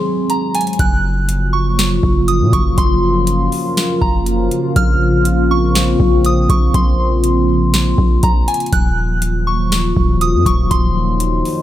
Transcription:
Already playing: analog synth pad D#3 F#3 G#3 C4 G#4, synth bell C6
0.30 synth bell A#5, closed hi-hat
0.55 synth bell G#5, closed hi-hat
0.61 closed hi-hat
0.67 closed hi-hat
0.73 closed hi-hat
0.79 808-style bass F#1, analog synth pad C#3 F3 A#3 F4, synth bell F#6, kick, closed hi-hat
1.29 closed hi-hat
1.53 synth bell C#6
1.79 snare, closed hi-hat
2.03 808-style bass F#1, kick
2.28 synth bell D#6, closed hi-hat
2.40 808-style bass A#2
2.53 808-style bass F#1, synth bell C#6, kick, closed hi-hat
2.78 808-style bass F#1, synth bell C6, kick, closed hi-hat
3.27 closed hi-hat
3.52 open hi-hat
3.77 snare, closed hi-hat
4.01 808-style bass F#1, synth bell A#5, kick
4.26 closed hi-hat
4.51 closed hi-hat
4.76 808-style bass A#1, analog synth pad C4, synth bell F6, kick, closed hi-hat
5.25 closed hi-hat
5.51 synth bell C#6
5.75 snare, closed hi-hat
6.00 808-style bass A#1, kick
6.25 synth bell D#6, closed hi-hat
6.49 808-style bass A#1, synth bell C#6, kick, closed hi-hat
6.74 808-style bass A#1, synth bell C6, kick, closed hi-hat
7.24 closed hi-hat
7.74 snare, closed hi-hat
7.98 808-style bass A#1, kick
8.23 808-style bass A#1, synth bell A#5, kick, closed hi-hat
8.48 synth bell G#5, closed hi-hat
8.54 closed hi-hat
8.60 closed hi-hat
8.66 closed hi-hat
8.73 808-style bass D#1, analog synth pad D#3 F3 F#3, synth bell F#6, kick, closed hi-hat
9.22 closed hi-hat
9.47 synth bell C#6
9.72 snare, closed hi-hat
9.97 808-style bass D#1, kick
10.21 synth bell D#6, closed hi-hat
10.34 808-style bass F#2
10.46 808-style bass D#1, synth bell C#6, kick, closed hi-hat
10.71 808-style bass D#1, analog synth pad D#4, synth bell C6, kick, closed hi-hat
11.20 closed hi-hat
11.45 open hi-hat

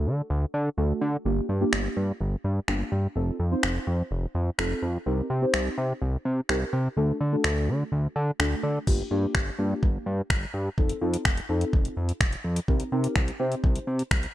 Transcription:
Already playing: synth stab A3 D4 F#4 A4
0.06 analog synth bass D3
0.30 analog synth bass D2
0.54 analog synth bass D3
0.77 analog synth bass D2, synth stab A3 D4 F#4 A4
1.01 analog synth bass D3
1.25 analog synth bass G1, synth stab A#3 D4 F4 G4
1.49 analog synth bass G2
1.61 synth stab A#3 D4 F4 G4
1.73 analog synth bass G1, finger snap
1.97 analog synth bass G2
2.21 analog synth bass G1
2.44 analog synth bass G2
2.68 analog synth bass G1, synth stab A#3 D4 F4 G4, finger snap
2.92 analog synth bass G2
3.16 analog synth bass F1, synth stab C4 D#4 F4 A4
3.40 analog synth bass F2
3.51 synth stab C4 D#4 F4 C5
3.63 analog synth bass F1, finger snap
3.87 analog synth bass F2
4.11 analog synth bass F1
4.35 analog synth bass F2
4.58 analog synth bass F1, synth stab C4 D#4 F4 A4, finger snap
4.82 analog synth bass F2
5.06 analog synth bass C2, synth stab C4 D#4 G4 A#4
5.30 analog synth bass C3
5.42 synth stab C4 D#4 G4 C5
5.54 analog synth bass C2, finger snap
5.78 analog synth bass C3
6.02 analog synth bass C2
6.25 analog synth bass C3
6.49 analog synth bass C2, synth stab C4 D#4 G4 A#4, finger snap
6.73 analog synth bass C3
6.97 analog synth bass D2, synth stab A3 D4 F#4 A4
7.21 analog synth bass D3
7.32 synth stab A3 D4 F#4 A4
7.44 analog synth bass D2, finger snap
7.68 analog synth bass D3
7.92 analog synth bass D2
8.16 analog synth bass D3
8.39 analog synth bass D2, synth stab A3 D4 F#4 A4, finger snap
8.63 analog synth bass D3
8.87 analog synth bass G1, synth stab A#3 D4 F4 G4, kick, crash
9.11 analog synth bass G2, synth stab A#3 D4 F4 G4
9.35 analog synth bass G1, finger snap, kick
9.59 analog synth bass G2, synth stab A#3 D4 F4 G4
9.83 analog synth bass G1, kick
10.06 analog synth bass G2
10.30 analog synth bass G1, finger snap, kick
10.54 analog synth bass G2
10.78 analog synth bass F1, synth stab C4 D#4 F4 A4, kick
10.89 closed hi-hat
11.01 analog synth bass F2, synth stab C4 D#4 F4 A4
11.14 closed hi-hat
11.25 analog synth bass F1, finger snap, kick
11.37 closed hi-hat
11.49 analog synth bass F2, synth stab C4 D#4 F4 A4
11.61 closed hi-hat
11.73 analog synth bass F1, kick
11.85 closed hi-hat
11.97 analog synth bass F2
12.09 closed hi-hat
12.21 analog synth bass F1, finger snap, kick
12.33 closed hi-hat
12.44 analog synth bass F2
12.56 closed hi-hat
12.68 analog synth bass C2, synth stab C4 D#4 G4 A#4, kick
12.80 closed hi-hat
12.92 analog synth bass C3, synth stab C4 D#4 G4 A#4
13.04 closed hi-hat
13.16 analog synth bass C2, finger snap, kick
13.28 closed hi-hat
13.39 analog synth bass C3, synth stab C4 D#4 G4 C5
13.52 closed hi-hat
13.64 analog synth bass C2, kick
13.76 closed hi-hat
13.87 analog synth bass C3
13.99 closed hi-hat
14.11 analog synth bass C2, finger snap, kick
14.23 closed hi-hat

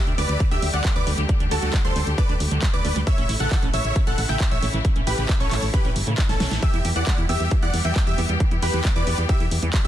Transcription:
Already playing: string section D3 G3 A3 G4
0.07 fm bass D2, acid bass D4, closed hi-hat
0.18 fm bass D2, acid bass A3, supersaw synth B4 D5, synth pluck D6, open hi-hat
0.29 fm bass D2, closed hi-hat
0.40 acid bass D3, kick, closed hi-hat
0.51 fm bass D2, acid bass D4, supersaw synth G4 E5, synth pluck E6, closed hi-hat
0.62 fm bass D2, open hi-hat
0.74 fm bass D2, acid bass D3, supersaw synth D5 F#5, synth pluck F#6, closed hi-hat
0.85 acid bass G3, kick, clap, closed hi-hat
0.96 fm bass D2, supersaw synth B4 D5, synth pluck D6, closed hi-hat
1.07 fm bass D2, acid bass A3, open hi-hat
1.18 fm bass D2, acid bass G3, closed hi-hat
1.29 acid bass D3, kick, closed hi-hat
1.40 fm bass D2, acid bass D4, closed hi-hat
1.51 fm bass D2, supersaw synth F#4 A4, acid bass G4, synth pluck A5, open hi-hat
1.62 fm bass D2, acid bass D3, closed hi-hat
1.74 acid bass G3, kick, clap, closed hi-hat
1.85 fm bass D2, acid bass D4, supersaw synth A4 C5, synth pluck C6, closed hi-hat
1.96 fm bass D2, acid bass A3, open hi-hat
2.07 fm bass D2, closed hi-hat
2.18 acid bass D3, supersaw synth B4 D5, synth pluck D6, kick, closed hi-hat
2.29 fm bass D2, acid bass D4, closed hi-hat
2.40 fm bass D2, open hi-hat
2.51 fm bass D2, acid bass D3, closed hi-hat
2.62 acid bass G3, kick, clap, closed hi-hat
2.74 fm bass D2, supersaw synth B4 D5, synth pluck D6, closed hi-hat
2.85 fm bass D2, acid bass A3, open hi-hat
2.96 fm bass D2, acid bass G3, closed hi-hat
3.07 string section C#3 E3 E4, acid bass C#3, supersaw synth C#5 E5, synth pluck E6, kick, closed hi-hat
3.18 fm bass A1, acid bass C#4, closed hi-hat
3.29 fm bass A1, acid bass E4, open hi-hat
3.40 fm bass A1, acid bass C#3, supersaw synth A4 F#5, synth pluck F#6, closed hi-hat
3.51 acid bass E3, kick, clap, closed hi-hat
3.62 fm bass A1, acid bass C#4, closed hi-hat
3.74 fm bass A1, acid bass A3, supersaw synth C#5 E5, synth pluck E6, open hi-hat
3.85 fm bass A1, closed hi-hat
3.96 acid bass C#3, kick, closed hi-hat
4.07 fm bass A1, acid bass C#4, supersaw synth A4 F#5, synth pluck F#6, closed hi-hat
4.18 fm bass A1, open hi-hat
4.29 fm bass A1, acid bass C#3, supersaw synth E5 G5, synth pluck G6, closed hi-hat
4.40 acid bass E3, kick, clap, closed hi-hat
4.51 fm bass A1, supersaw synth C#5 E5, synth pluck E6, closed hi-hat
4.62 fm bass A1, acid bass A3, open hi-hat
4.74 fm bass A1, acid bass E3, closed hi-hat
4.85 acid bass C#3, kick, closed hi-hat
4.96 fm bass A1, acid bass C#4, closed hi-hat
5.07 fm bass A1, acid bass E4, supersaw synth G4 B4, synth pluck B5, open hi-hat
5.18 fm bass A1, acid bass C#3, closed hi-hat
5.29 kick, clap, closed hi-hat
5.40 fm bass A1, acid bass C#4, supersaw synth A4 C#5, synth pluck C#6, closed hi-hat
5.51 fm bass A1, acid bass A3, clap, open hi-hat
5.63 fm bass A1, open hi-hat
5.74 acid bass C#3, supersaw synth G4 B4, synth pluck B5, kick, closed hi-hat
5.85 fm bass A1, acid bass C#4, closed hi-hat
5.96 fm bass G1, open hi-hat
6.07 fm bass A2, acid bass C#3, closed hi-hat
6.18 acid bass E3, kick, clap, closed hi-hat
6.29 fm bass A1, supersaw synth C#4 A4, synth pluck A5, snare, closed hi-hat
6.40 fm bass B1, acid bass A3, snare, open hi-hat
6.51 fm bass A1, acid bass E3, snare, closed hi-hat
6.62 acid bass E3, string section G3 B3 G4, supersaw synth G4 E5, synth pluck E6, kick, closed hi-hat
6.74 fm bass E2, acid bass E4, closed hi-hat
6.85 fm bass E2, acid bass G4, open hi-hat
6.96 fm bass E2, acid bass E3, supersaw synth D5 F#5, synth pluck F#6, closed hi-hat
7.07 acid bass G3, kick, clap, closed hi-hat
7.18 fm bass E2, acid bass E4, closed hi-hat
7.29 fm bass E2, acid bass B3, supersaw synth G4 E5, synth pluck E6, open hi-hat
7.40 fm bass E2, closed hi-hat
7.51 acid bass E3, kick, closed hi-hat
7.62 fm bass E2, acid bass E4, supersaw synth D5 F#5, synth pluck F#6, closed hi-hat
7.74 fm bass E2, open hi-hat
7.85 fm bass E2, acid bass E3, supersaw synth E5 G5, synth pluck G6, closed hi-hat
7.96 acid bass G3, kick, clap, closed hi-hat
8.07 fm bass E2, supersaw synth G4 E5, synth pluck E6, closed hi-hat
8.18 fm bass E2, acid bass B3, open hi-hat
8.29 fm bass E2, acid bass G3, closed hi-hat
8.40 acid bass E3, kick, closed hi-hat
8.51 fm bass E2, acid bass E4, closed hi-hat
8.62 fm bass E2, supersaw synth G4 B4, acid bass G4, synth pluck B5, open hi-hat
8.74 fm bass E2, acid bass E3, closed hi-hat
8.85 acid bass G3, kick, clap, closed hi-hat
8.96 fm bass E2, acid bass E4, supersaw synth B4 D5, synth pluck D6, closed hi-hat
9.07 fm bass E2, acid bass B3, open hi-hat
9.18 fm bass E2, closed hi-hat
9.29 acid bass E3, supersaw synth G4 E5, synth pluck E6, kick, closed hi-hat
9.40 fm bass E2, acid bass E4, closed hi-hat
9.51 fm bass E2, open hi-hat
9.63 fm bass E2, acid bass E3, closed hi-hat
9.74 acid bass G3, kick, clap, closed hi-hat

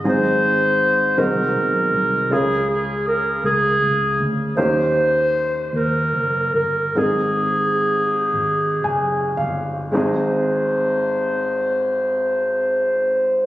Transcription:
0.04 fingered electric bass G#1, grand piano G#2 G#3 C4 D#4 G#4, clarinet C5
1.17 fingered electric bass C2, grand piano D#3 G#3 C4 D#4 F#4, clarinet A#4
1.56 fingered electric bass B1
1.94 fingered electric bass C2
2.30 fingered electric bass C#2, grand piano C#3 G#3 C#4 F4 G#4, clarinet G#4
2.70 clarinet G#4
3.07 clarinet A#4
3.44 fingered electric bass C#2, clarinet G#4
3.82 fingered electric bass C#2
4.20 fingered electric bass D2
4.57 fingered electric bass D#2, grand piano D#3 A#3 C#4 D#4 G4, clarinet C5
5.73 fingered electric bass D#2, clarinet A#4
6.13 fingered electric bass F#1
6.54 fingered electric bass G1, clarinet A#4
6.95 fingered electric bass G#1, grand piano G#2 G#3 C4 D#4 G#4, clarinet G#4
8.33 fingered electric bass G#1
8.84 fingered electric bass F#1, grand piano G#5
9.37 fingered electric bass G1, grand piano F5
9.92 grand piano G#1 G#3 C4 D#4, fingered electric bass G#1
9.97 grand piano G#4, clarinet C5

